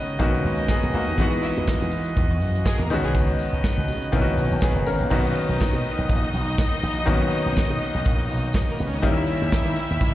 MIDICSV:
0, 0, Header, 1, 7, 480
1, 0, Start_track
1, 0, Tempo, 490597
1, 1156, Time_signature, 4, 2, 24, 8
1, 9921, End_track
2, 0, Start_track
2, 0, Title_t, "String section"
2, 0, Program_c, 0, 48
2, 1163, Note_on_c, 0, 66, 98
2, 1164, Note_on_c, 0, 78, 107
2, 1268, Note_off_c, 0, 66, 0
2, 1268, Note_off_c, 0, 78, 0
2, 1392, Note_on_c, 0, 64, 72
2, 1397, Note_on_c, 0, 76, 83
2, 1501, Note_off_c, 0, 64, 0
2, 1504, Note_off_c, 0, 76, 0
2, 2590, Note_on_c, 0, 68, 94
2, 2598, Note_on_c, 0, 56, 94
2, 2701, Note_off_c, 0, 68, 0
2, 2705, Note_off_c, 0, 56, 0
2, 2731, Note_on_c, 0, 58, 73
2, 2733, Note_on_c, 0, 70, 80
2, 2816, Note_off_c, 0, 58, 0
2, 2817, Note_off_c, 0, 70, 0
2, 2842, Note_on_c, 0, 59, 76
2, 2845, Note_on_c, 0, 71, 78
2, 2948, Note_off_c, 0, 59, 0
2, 2949, Note_off_c, 0, 71, 0
2, 2970, Note_on_c, 0, 68, 99
2, 2972, Note_on_c, 0, 56, 74
2, 3055, Note_off_c, 0, 68, 0
2, 3057, Note_off_c, 0, 56, 0
2, 5003, Note_on_c, 0, 63, 81
2, 5003, Note_on_c, 0, 75, 104
2, 8447, Note_off_c, 0, 63, 0
2, 8447, Note_off_c, 0, 75, 0
2, 8517, Note_on_c, 0, 58, 57
2, 8520, Note_on_c, 0, 70, 61
2, 8597, Note_off_c, 0, 58, 0
2, 8599, Note_off_c, 0, 70, 0
2, 8599, Note_on_c, 0, 59, 65
2, 8602, Note_on_c, 0, 71, 76
2, 8674, Note_on_c, 0, 61, 74
2, 8679, Note_off_c, 0, 59, 0
2, 8679, Note_on_c, 0, 73, 78
2, 8680, Note_off_c, 0, 71, 0
2, 8756, Note_off_c, 0, 61, 0
2, 8758, Note_off_c, 0, 73, 0
2, 8760, Note_on_c, 0, 63, 81
2, 8763, Note_on_c, 0, 75, 90
2, 8839, Note_off_c, 0, 63, 0
2, 8841, Note_off_c, 0, 75, 0
2, 8844, Note_on_c, 0, 64, 86
2, 8846, Note_on_c, 0, 76, 108
2, 9921, Note_off_c, 0, 64, 0
2, 9921, Note_off_c, 0, 76, 0
2, 9921, End_track
3, 0, Start_track
3, 0, Title_t, "French horn section"
3, 0, Program_c, 1, 60
3, 0, Note_on_c, 1, 59, 75
3, 0, Note_on_c, 1, 66, 63
3, 0, Note_on_c, 1, 75, 87
3, 165, Note_off_c, 1, 66, 0
3, 185, Note_off_c, 1, 59, 0
3, 191, Note_on_c, 1, 70, 69
3, 197, Note_on_c, 1, 61, 69
3, 1144, Note_off_c, 1, 70, 0
3, 1147, Note_off_c, 1, 61, 0
3, 1154, Note_on_c, 1, 56, 74
3, 1157, Note_on_c, 1, 66, 73
3, 2798, Note_off_c, 1, 75, 0
3, 2820, Note_off_c, 1, 56, 0
3, 2821, Note_off_c, 1, 66, 0
3, 2836, Note_on_c, 1, 66, 72
3, 2839, Note_on_c, 1, 59, 84
3, 2845, Note_on_c, 1, 75, 89
3, 4025, Note_off_c, 1, 66, 0
3, 4027, Note_off_c, 1, 59, 0
3, 4033, Note_on_c, 1, 61, 70
3, 4038, Note_on_c, 1, 70, 60
3, 4833, Note_off_c, 1, 61, 0
3, 4833, Note_off_c, 1, 70, 0
3, 4833, Note_off_c, 1, 75, 0
3, 4999, Note_on_c, 1, 75, 80
3, 5002, Note_on_c, 1, 70, 63
3, 5004, Note_on_c, 1, 47, 81
3, 8801, Note_off_c, 1, 75, 0
3, 8802, Note_off_c, 1, 70, 0
3, 8803, Note_off_c, 1, 47, 0
3, 8822, Note_on_c, 1, 76, 84
3, 8823, Note_on_c, 1, 67, 67
3, 8825, Note_on_c, 1, 61, 78
3, 9921, Note_off_c, 1, 61, 0
3, 9921, Note_off_c, 1, 67, 0
3, 9921, Note_off_c, 1, 76, 0
3, 9921, End_track
4, 0, Start_track
4, 0, Title_t, "Grand piano"
4, 0, Program_c, 2, 0
4, 0, Control_c, 2, 64, 127
4, 0, Note_on_c, 2, 51, 75
4, 0, Note_on_c, 2, 56, 72
4, 0, Note_on_c, 2, 59, 71
4, 0, Note_on_c, 2, 61, 63
4, 0, Note_on_c, 2, 66, 85
4, 163, Note_off_c, 2, 51, 0
4, 165, Note_off_c, 2, 56, 0
4, 169, Note_off_c, 2, 59, 0
4, 173, Note_off_c, 2, 61, 0
4, 178, Note_off_c, 2, 66, 0
4, 184, Note_on_c, 2, 51, 66
4, 188, Note_on_c, 2, 58, 66
4, 196, Note_on_c, 2, 59, 60
4, 206, Note_on_c, 2, 61, 66
4, 210, Control_c, 2, 64, 0
4, 213, Note_on_c, 2, 66, 88
4, 392, Control_c, 2, 64, 127
4, 662, Note_off_c, 2, 58, 0
4, 666, Note_off_c, 2, 59, 0
4, 672, Note_off_c, 2, 61, 0
4, 675, Note_off_c, 2, 66, 0
4, 687, Note_on_c, 2, 68, 66
4, 691, Note_on_c, 2, 59, 55
4, 910, Note_off_c, 2, 68, 0
4, 912, Note_off_c, 2, 59, 0
4, 922, Note_on_c, 2, 66, 66
4, 931, Note_on_c, 2, 58, 55
4, 1131, Note_off_c, 2, 51, 0
4, 1157, Note_on_c, 2, 52, 72
4, 1167, Note_on_c, 2, 56, 66
4, 1170, Control_c, 2, 64, 0
4, 1172, Note_off_c, 2, 66, 0
4, 1172, Note_on_c, 2, 59, 64
4, 1178, Note_on_c, 2, 63, 62
4, 1187, Note_on_c, 2, 66, 74
4, 1342, Control_c, 2, 64, 127
4, 1380, Note_off_c, 2, 58, 0
4, 2804, Note_off_c, 2, 52, 0
4, 2809, Note_off_c, 2, 56, 0
4, 2812, Note_off_c, 2, 59, 0
4, 2814, Note_off_c, 2, 63, 0
4, 2819, Note_off_c, 2, 66, 0
4, 2838, Note_on_c, 2, 51, 77
4, 2848, Control_c, 2, 64, 0
4, 2849, Note_on_c, 2, 56, 68
4, 2849, Note_on_c, 2, 59, 68
4, 2859, Note_on_c, 2, 61, 73
4, 2871, Note_on_c, 2, 66, 91
4, 3007, Control_c, 2, 64, 127
4, 4014, Note_off_c, 2, 51, 0
4, 4020, Note_off_c, 2, 56, 0
4, 4020, Note_off_c, 2, 59, 0
4, 4025, Note_off_c, 2, 61, 0
4, 4031, Note_off_c, 2, 66, 0
4, 4031, Note_on_c, 2, 51, 74
4, 4037, Note_on_c, 2, 58, 69
4, 4045, Note_on_c, 2, 59, 68
4, 4050, Control_c, 2, 64, 0
4, 4053, Note_on_c, 2, 61, 68
4, 4061, Note_on_c, 2, 64, 68
4, 4114, Note_off_c, 2, 64, 0
4, 4120, Note_on_c, 2, 66, 80
4, 4226, Control_c, 2, 64, 127
4, 4508, Note_off_c, 2, 58, 0
4, 4512, Note_off_c, 2, 59, 0
4, 4516, Note_off_c, 2, 61, 0
4, 4523, Note_on_c, 2, 68, 63
4, 4529, Note_on_c, 2, 59, 61
4, 4550, Note_off_c, 2, 66, 0
4, 4749, Note_off_c, 2, 68, 0
4, 4752, Note_off_c, 2, 59, 0
4, 4759, Note_on_c, 2, 70, 64
4, 4765, Note_on_c, 2, 61, 63
4, 4975, Note_off_c, 2, 51, 0
4, 4993, Note_on_c, 2, 51, 80
4, 4994, Note_on_c, 2, 58, 63
4, 4998, Note_off_c, 2, 61, 0
4, 5005, Note_on_c, 2, 59, 73
4, 5010, Control_c, 2, 64, 0
4, 5013, Note_on_c, 2, 61, 71
4, 5020, Note_on_c, 2, 66, 83
4, 5180, Control_c, 2, 64, 127
4, 5215, Note_off_c, 2, 70, 0
4, 6877, Note_off_c, 2, 51, 0
4, 6878, Note_off_c, 2, 58, 0
4, 6883, Note_off_c, 2, 59, 0
4, 6887, Note_off_c, 2, 61, 0
4, 6891, Note_off_c, 2, 66, 0
4, 6903, Note_on_c, 2, 51, 79
4, 6910, Note_on_c, 2, 58, 67
4, 6917, Note_on_c, 2, 59, 68
4, 6920, Note_on_c, 2, 61, 71
4, 6931, Note_on_c, 2, 66, 83
4, 8792, Note_off_c, 2, 51, 0
4, 8796, Note_off_c, 2, 58, 0
4, 8800, Note_off_c, 2, 59, 0
4, 8801, Note_off_c, 2, 61, 0
4, 8807, Note_off_c, 2, 66, 0
4, 8828, Note_on_c, 2, 51, 76
4, 8832, Note_on_c, 2, 55, 71
4, 8838, Note_on_c, 2, 58, 69
4, 8842, Note_on_c, 2, 61, 72
4, 8849, Control_c, 2, 64, 0
4, 8853, Note_on_c, 2, 64, 76
4, 9008, Control_c, 2, 64, 127
4, 9921, Note_off_c, 2, 51, 0
4, 9921, Note_off_c, 2, 55, 0
4, 9921, Note_off_c, 2, 58, 0
4, 9921, Note_off_c, 2, 61, 0
4, 9921, Note_off_c, 2, 64, 0
4, 9921, End_track
5, 0, Start_track
5, 0, Title_t, "Slap bass"
5, 0, Program_c, 3, 36
5, 0, Note_on_c, 3, 49, 89
5, 161, Note_off_c, 3, 49, 0
5, 192, Note_on_c, 3, 35, 94
5, 396, Note_off_c, 3, 35, 0
5, 436, Note_on_c, 3, 37, 98
5, 638, Note_off_c, 3, 37, 0
5, 814, Note_on_c, 3, 35, 80
5, 902, Note_off_c, 3, 35, 0
5, 917, Note_on_c, 3, 37, 93
5, 1030, Note_off_c, 3, 37, 0
5, 1056, Note_on_c, 3, 39, 84
5, 1143, Note_off_c, 3, 39, 0
5, 1156, Note_on_c, 3, 40, 99
5, 1359, Note_off_c, 3, 40, 0
5, 1540, Note_on_c, 3, 40, 93
5, 1625, Note_off_c, 3, 40, 0
5, 1781, Note_on_c, 3, 40, 91
5, 1866, Note_off_c, 3, 40, 0
5, 1888, Note_on_c, 3, 52, 91
5, 2086, Note_off_c, 3, 52, 0
5, 2125, Note_on_c, 3, 40, 90
5, 2364, Note_off_c, 3, 40, 0
5, 2364, Note_on_c, 3, 42, 93
5, 2564, Note_off_c, 3, 42, 0
5, 2731, Note_on_c, 3, 40, 98
5, 2820, Note_off_c, 3, 40, 0
5, 2836, Note_on_c, 3, 37, 93
5, 2950, Note_off_c, 3, 37, 0
5, 2970, Note_on_c, 3, 35, 83
5, 3060, Note_off_c, 3, 35, 0
5, 3079, Note_on_c, 3, 37, 103
5, 3281, Note_off_c, 3, 37, 0
5, 3450, Note_on_c, 3, 37, 83
5, 3540, Note_off_c, 3, 37, 0
5, 3692, Note_on_c, 3, 37, 111
5, 3797, Note_on_c, 3, 49, 96
5, 3812, Note_off_c, 3, 37, 0
5, 4000, Note_off_c, 3, 49, 0
5, 4041, Note_on_c, 3, 35, 92
5, 4170, Note_off_c, 3, 35, 0
5, 4170, Note_on_c, 3, 37, 102
5, 4260, Note_off_c, 3, 37, 0
5, 4279, Note_on_c, 3, 35, 100
5, 4392, Note_off_c, 3, 35, 0
5, 4415, Note_on_c, 3, 34, 100
5, 4503, Note_off_c, 3, 34, 0
5, 4653, Note_on_c, 3, 30, 94
5, 4758, Note_off_c, 3, 30, 0
5, 4758, Note_on_c, 3, 32, 92
5, 4871, Note_off_c, 3, 32, 0
5, 4890, Note_on_c, 3, 34, 91
5, 4980, Note_off_c, 3, 34, 0
5, 5003, Note_on_c, 3, 35, 97
5, 5203, Note_off_c, 3, 35, 0
5, 5371, Note_on_c, 3, 35, 86
5, 5461, Note_off_c, 3, 35, 0
5, 5608, Note_on_c, 3, 47, 89
5, 5699, Note_off_c, 3, 47, 0
5, 5854, Note_on_c, 3, 35, 77
5, 5943, Note_off_c, 3, 35, 0
5, 5963, Note_on_c, 3, 34, 81
5, 6164, Note_off_c, 3, 34, 0
5, 6199, Note_on_c, 3, 35, 88
5, 6401, Note_off_c, 3, 35, 0
5, 6683, Note_on_c, 3, 34, 82
5, 6883, Note_off_c, 3, 34, 0
5, 6926, Note_on_c, 3, 35, 104
5, 7125, Note_off_c, 3, 35, 0
5, 7298, Note_on_c, 3, 35, 96
5, 7385, Note_off_c, 3, 35, 0
5, 7533, Note_on_c, 3, 47, 101
5, 7622, Note_off_c, 3, 47, 0
5, 7773, Note_on_c, 3, 35, 80
5, 7862, Note_off_c, 3, 35, 0
5, 7888, Note_on_c, 3, 34, 80
5, 8127, Note_off_c, 3, 34, 0
5, 8127, Note_on_c, 3, 35, 100
5, 8326, Note_off_c, 3, 35, 0
5, 8608, Note_on_c, 3, 37, 90
5, 8806, Note_off_c, 3, 37, 0
5, 8835, Note_on_c, 3, 39, 111
5, 9039, Note_off_c, 3, 39, 0
5, 9213, Note_on_c, 3, 39, 88
5, 9302, Note_off_c, 3, 39, 0
5, 9446, Note_on_c, 3, 51, 90
5, 9538, Note_off_c, 3, 51, 0
5, 9691, Note_on_c, 3, 39, 86
5, 9781, Note_off_c, 3, 39, 0
5, 9795, Note_on_c, 3, 37, 104
5, 9921, Note_off_c, 3, 37, 0
5, 9921, End_track
6, 0, Start_track
6, 0, Title_t, "Muted slap bass strokes"
6, 7407, Note_on_c, 9, 29, 45
6, 7504, Note_off_c, 9, 29, 0
6, 9921, End_track
7, 0, Start_track
7, 0, Title_t, "Drums"
7, 88, Note_on_c, 9, 42, 50
7, 186, Note_off_c, 9, 42, 0
7, 190, Note_on_c, 9, 42, 60
7, 193, Note_on_c, 9, 36, 113
7, 288, Note_off_c, 9, 42, 0
7, 290, Note_off_c, 9, 36, 0
7, 334, Note_on_c, 9, 42, 52
7, 429, Note_on_c, 9, 46, 55
7, 432, Note_off_c, 9, 42, 0
7, 527, Note_off_c, 9, 46, 0
7, 572, Note_on_c, 9, 42, 51
7, 670, Note_off_c, 9, 42, 0
7, 670, Note_on_c, 9, 38, 104
7, 671, Note_on_c, 9, 36, 104
7, 767, Note_off_c, 9, 38, 0
7, 769, Note_off_c, 9, 36, 0
7, 816, Note_on_c, 9, 42, 55
7, 913, Note_off_c, 9, 42, 0
7, 918, Note_on_c, 9, 46, 80
7, 1016, Note_off_c, 9, 46, 0
7, 1054, Note_on_c, 9, 42, 54
7, 1151, Note_off_c, 9, 42, 0
7, 1151, Note_on_c, 9, 42, 58
7, 1154, Note_on_c, 9, 36, 109
7, 1155, Note_on_c, 9, 54, 61
7, 1249, Note_off_c, 9, 42, 0
7, 1252, Note_off_c, 9, 36, 0
7, 1253, Note_off_c, 9, 54, 0
7, 1287, Note_on_c, 9, 42, 48
7, 1295, Note_on_c, 9, 54, 40
7, 1385, Note_off_c, 9, 42, 0
7, 1387, Note_on_c, 9, 46, 61
7, 1393, Note_off_c, 9, 54, 0
7, 1396, Note_on_c, 9, 54, 47
7, 1485, Note_off_c, 9, 46, 0
7, 1494, Note_off_c, 9, 54, 0
7, 1538, Note_on_c, 9, 42, 47
7, 1636, Note_off_c, 9, 42, 0
7, 1637, Note_on_c, 9, 54, 79
7, 1640, Note_on_c, 9, 36, 102
7, 1642, Note_on_c, 9, 38, 120
7, 1735, Note_off_c, 9, 54, 0
7, 1738, Note_off_c, 9, 36, 0
7, 1740, Note_off_c, 9, 38, 0
7, 1771, Note_on_c, 9, 42, 52
7, 1869, Note_off_c, 9, 42, 0
7, 1873, Note_on_c, 9, 46, 65
7, 1874, Note_on_c, 9, 54, 62
7, 1971, Note_off_c, 9, 46, 0
7, 1972, Note_off_c, 9, 54, 0
7, 2012, Note_on_c, 9, 54, 37
7, 2017, Note_on_c, 9, 42, 50
7, 2110, Note_off_c, 9, 54, 0
7, 2115, Note_off_c, 9, 42, 0
7, 2121, Note_on_c, 9, 36, 121
7, 2123, Note_on_c, 9, 54, 67
7, 2125, Note_on_c, 9, 42, 60
7, 2219, Note_off_c, 9, 36, 0
7, 2220, Note_off_c, 9, 54, 0
7, 2223, Note_off_c, 9, 42, 0
7, 2261, Note_on_c, 9, 42, 55
7, 2355, Note_on_c, 9, 46, 59
7, 2359, Note_off_c, 9, 42, 0
7, 2365, Note_on_c, 9, 54, 45
7, 2453, Note_off_c, 9, 46, 0
7, 2463, Note_off_c, 9, 54, 0
7, 2502, Note_on_c, 9, 42, 55
7, 2504, Note_on_c, 9, 54, 31
7, 2598, Note_on_c, 9, 36, 107
7, 2600, Note_off_c, 9, 42, 0
7, 2600, Note_on_c, 9, 38, 114
7, 2601, Note_off_c, 9, 54, 0
7, 2601, Note_on_c, 9, 54, 88
7, 2696, Note_off_c, 9, 36, 0
7, 2698, Note_off_c, 9, 38, 0
7, 2699, Note_off_c, 9, 54, 0
7, 2744, Note_on_c, 9, 42, 57
7, 2840, Note_on_c, 9, 46, 84
7, 2842, Note_off_c, 9, 42, 0
7, 2855, Note_on_c, 9, 54, 63
7, 2938, Note_off_c, 9, 46, 0
7, 2953, Note_off_c, 9, 54, 0
7, 2974, Note_on_c, 9, 42, 51
7, 3072, Note_off_c, 9, 42, 0
7, 3079, Note_on_c, 9, 36, 116
7, 3079, Note_on_c, 9, 42, 51
7, 3081, Note_on_c, 9, 54, 61
7, 3177, Note_off_c, 9, 36, 0
7, 3177, Note_off_c, 9, 42, 0
7, 3179, Note_off_c, 9, 54, 0
7, 3216, Note_on_c, 9, 42, 49
7, 3314, Note_off_c, 9, 42, 0
7, 3314, Note_on_c, 9, 46, 56
7, 3325, Note_on_c, 9, 54, 51
7, 3411, Note_off_c, 9, 46, 0
7, 3423, Note_off_c, 9, 54, 0
7, 3466, Note_on_c, 9, 42, 54
7, 3561, Note_on_c, 9, 36, 104
7, 3561, Note_on_c, 9, 38, 118
7, 3563, Note_on_c, 9, 54, 88
7, 3564, Note_off_c, 9, 42, 0
7, 3659, Note_off_c, 9, 36, 0
7, 3659, Note_off_c, 9, 38, 0
7, 3661, Note_off_c, 9, 54, 0
7, 3686, Note_on_c, 9, 42, 56
7, 3784, Note_off_c, 9, 42, 0
7, 3797, Note_on_c, 9, 46, 68
7, 3797, Note_on_c, 9, 54, 64
7, 3894, Note_off_c, 9, 46, 0
7, 3895, Note_off_c, 9, 54, 0
7, 3933, Note_on_c, 9, 54, 37
7, 3937, Note_on_c, 9, 42, 44
7, 4031, Note_off_c, 9, 54, 0
7, 4035, Note_off_c, 9, 42, 0
7, 4041, Note_on_c, 9, 36, 112
7, 4044, Note_on_c, 9, 54, 60
7, 4046, Note_on_c, 9, 42, 61
7, 4139, Note_off_c, 9, 36, 0
7, 4142, Note_off_c, 9, 54, 0
7, 4144, Note_off_c, 9, 42, 0
7, 4183, Note_on_c, 9, 42, 60
7, 4278, Note_on_c, 9, 54, 52
7, 4280, Note_on_c, 9, 46, 61
7, 4281, Note_off_c, 9, 42, 0
7, 4376, Note_off_c, 9, 54, 0
7, 4378, Note_off_c, 9, 46, 0
7, 4413, Note_on_c, 9, 54, 36
7, 4425, Note_on_c, 9, 42, 55
7, 4504, Note_off_c, 9, 54, 0
7, 4504, Note_on_c, 9, 54, 83
7, 4520, Note_on_c, 9, 36, 119
7, 4521, Note_on_c, 9, 38, 107
7, 4523, Note_off_c, 9, 42, 0
7, 4602, Note_off_c, 9, 54, 0
7, 4618, Note_off_c, 9, 36, 0
7, 4619, Note_off_c, 9, 38, 0
7, 4668, Note_on_c, 9, 42, 54
7, 4761, Note_on_c, 9, 54, 59
7, 4766, Note_off_c, 9, 42, 0
7, 4768, Note_on_c, 9, 46, 76
7, 4859, Note_off_c, 9, 54, 0
7, 4866, Note_off_c, 9, 46, 0
7, 4896, Note_on_c, 9, 54, 29
7, 4900, Note_on_c, 9, 42, 46
7, 4994, Note_off_c, 9, 54, 0
7, 4998, Note_off_c, 9, 42, 0
7, 4998, Note_on_c, 9, 54, 56
7, 5001, Note_on_c, 9, 36, 107
7, 5001, Note_on_c, 9, 49, 82
7, 5096, Note_off_c, 9, 54, 0
7, 5099, Note_off_c, 9, 36, 0
7, 5099, Note_off_c, 9, 49, 0
7, 5134, Note_on_c, 9, 54, 34
7, 5138, Note_on_c, 9, 42, 50
7, 5232, Note_off_c, 9, 54, 0
7, 5236, Note_off_c, 9, 42, 0
7, 5236, Note_on_c, 9, 54, 53
7, 5239, Note_on_c, 9, 46, 61
7, 5334, Note_off_c, 9, 54, 0
7, 5337, Note_off_c, 9, 46, 0
7, 5392, Note_on_c, 9, 42, 52
7, 5480, Note_on_c, 9, 54, 98
7, 5486, Note_on_c, 9, 36, 114
7, 5490, Note_off_c, 9, 42, 0
7, 5492, Note_on_c, 9, 38, 109
7, 5578, Note_off_c, 9, 54, 0
7, 5584, Note_off_c, 9, 36, 0
7, 5590, Note_off_c, 9, 38, 0
7, 5614, Note_on_c, 9, 42, 58
7, 5712, Note_off_c, 9, 42, 0
7, 5714, Note_on_c, 9, 54, 61
7, 5729, Note_on_c, 9, 46, 76
7, 5811, Note_off_c, 9, 54, 0
7, 5826, Note_off_c, 9, 46, 0
7, 5862, Note_on_c, 9, 42, 50
7, 5959, Note_on_c, 9, 54, 65
7, 5960, Note_off_c, 9, 42, 0
7, 5963, Note_on_c, 9, 36, 118
7, 5964, Note_on_c, 9, 42, 69
7, 6056, Note_off_c, 9, 54, 0
7, 6061, Note_off_c, 9, 36, 0
7, 6062, Note_off_c, 9, 42, 0
7, 6107, Note_on_c, 9, 42, 59
7, 6198, Note_on_c, 9, 46, 57
7, 6205, Note_off_c, 9, 42, 0
7, 6205, Note_on_c, 9, 54, 51
7, 6296, Note_off_c, 9, 46, 0
7, 6303, Note_off_c, 9, 54, 0
7, 6344, Note_on_c, 9, 54, 36
7, 6345, Note_on_c, 9, 42, 50
7, 6434, Note_off_c, 9, 54, 0
7, 6434, Note_on_c, 9, 54, 90
7, 6441, Note_on_c, 9, 36, 114
7, 6443, Note_off_c, 9, 42, 0
7, 6446, Note_on_c, 9, 38, 109
7, 6532, Note_off_c, 9, 54, 0
7, 6539, Note_off_c, 9, 36, 0
7, 6544, Note_off_c, 9, 38, 0
7, 6592, Note_on_c, 9, 42, 63
7, 6684, Note_on_c, 9, 54, 59
7, 6690, Note_off_c, 9, 42, 0
7, 6694, Note_on_c, 9, 46, 76
7, 6782, Note_off_c, 9, 54, 0
7, 6792, Note_off_c, 9, 46, 0
7, 6813, Note_on_c, 9, 54, 31
7, 6824, Note_on_c, 9, 42, 56
7, 6910, Note_off_c, 9, 54, 0
7, 6911, Note_on_c, 9, 54, 55
7, 6922, Note_off_c, 9, 42, 0
7, 6923, Note_on_c, 9, 36, 120
7, 6928, Note_on_c, 9, 42, 61
7, 7009, Note_off_c, 9, 54, 0
7, 7021, Note_off_c, 9, 36, 0
7, 7026, Note_off_c, 9, 42, 0
7, 7059, Note_on_c, 9, 42, 52
7, 7148, Note_on_c, 9, 54, 50
7, 7157, Note_off_c, 9, 42, 0
7, 7159, Note_on_c, 9, 46, 60
7, 7246, Note_off_c, 9, 54, 0
7, 7257, Note_off_c, 9, 46, 0
7, 7311, Note_on_c, 9, 42, 53
7, 7394, Note_on_c, 9, 54, 95
7, 7406, Note_on_c, 9, 36, 104
7, 7409, Note_off_c, 9, 42, 0
7, 7412, Note_on_c, 9, 38, 115
7, 7492, Note_off_c, 9, 54, 0
7, 7503, Note_off_c, 9, 36, 0
7, 7510, Note_off_c, 9, 38, 0
7, 7543, Note_on_c, 9, 42, 52
7, 7624, Note_on_c, 9, 54, 58
7, 7641, Note_off_c, 9, 42, 0
7, 7649, Note_on_c, 9, 46, 75
7, 7722, Note_off_c, 9, 54, 0
7, 7747, Note_off_c, 9, 46, 0
7, 7762, Note_on_c, 9, 54, 35
7, 7791, Note_on_c, 9, 42, 50
7, 7859, Note_off_c, 9, 54, 0
7, 7873, Note_on_c, 9, 54, 62
7, 7884, Note_on_c, 9, 36, 122
7, 7889, Note_off_c, 9, 42, 0
7, 7897, Note_on_c, 9, 42, 65
7, 7971, Note_off_c, 9, 54, 0
7, 7982, Note_off_c, 9, 36, 0
7, 7995, Note_off_c, 9, 42, 0
7, 8029, Note_on_c, 9, 42, 60
7, 8111, Note_on_c, 9, 54, 53
7, 8122, Note_on_c, 9, 46, 62
7, 8127, Note_off_c, 9, 42, 0
7, 8209, Note_off_c, 9, 54, 0
7, 8220, Note_off_c, 9, 46, 0
7, 8249, Note_on_c, 9, 54, 35
7, 8267, Note_on_c, 9, 42, 52
7, 8346, Note_off_c, 9, 54, 0
7, 8346, Note_on_c, 9, 54, 98
7, 8359, Note_on_c, 9, 36, 104
7, 8364, Note_off_c, 9, 42, 0
7, 8364, Note_on_c, 9, 38, 113
7, 8444, Note_off_c, 9, 54, 0
7, 8457, Note_off_c, 9, 36, 0
7, 8462, Note_off_c, 9, 38, 0
7, 8509, Note_on_c, 9, 42, 57
7, 8598, Note_on_c, 9, 54, 67
7, 8607, Note_off_c, 9, 42, 0
7, 8608, Note_on_c, 9, 46, 75
7, 8696, Note_off_c, 9, 54, 0
7, 8706, Note_off_c, 9, 46, 0
7, 8737, Note_on_c, 9, 42, 57
7, 8831, Note_on_c, 9, 54, 60
7, 8833, Note_off_c, 9, 42, 0
7, 8833, Note_on_c, 9, 42, 54
7, 8836, Note_on_c, 9, 36, 105
7, 8929, Note_off_c, 9, 54, 0
7, 8931, Note_off_c, 9, 42, 0
7, 8933, Note_off_c, 9, 36, 0
7, 8976, Note_on_c, 9, 42, 54
7, 9061, Note_on_c, 9, 54, 48
7, 9071, Note_on_c, 9, 46, 59
7, 9074, Note_off_c, 9, 42, 0
7, 9159, Note_off_c, 9, 54, 0
7, 9169, Note_off_c, 9, 46, 0
7, 9224, Note_on_c, 9, 42, 50
7, 9311, Note_on_c, 9, 54, 99
7, 9318, Note_on_c, 9, 38, 121
7, 9319, Note_on_c, 9, 36, 108
7, 9322, Note_off_c, 9, 42, 0
7, 9409, Note_off_c, 9, 54, 0
7, 9416, Note_off_c, 9, 38, 0
7, 9417, Note_off_c, 9, 36, 0
7, 9452, Note_on_c, 9, 42, 58
7, 9549, Note_on_c, 9, 54, 63
7, 9550, Note_off_c, 9, 42, 0
7, 9554, Note_on_c, 9, 46, 82
7, 9647, Note_off_c, 9, 54, 0
7, 9652, Note_off_c, 9, 46, 0
7, 9678, Note_on_c, 9, 54, 34
7, 9692, Note_on_c, 9, 42, 50
7, 9776, Note_off_c, 9, 54, 0
7, 9782, Note_on_c, 9, 54, 67
7, 9790, Note_off_c, 9, 42, 0
7, 9793, Note_on_c, 9, 36, 114
7, 9796, Note_on_c, 9, 42, 61
7, 9879, Note_off_c, 9, 54, 0
7, 9891, Note_off_c, 9, 36, 0
7, 9894, Note_off_c, 9, 42, 0
7, 9921, End_track
0, 0, End_of_file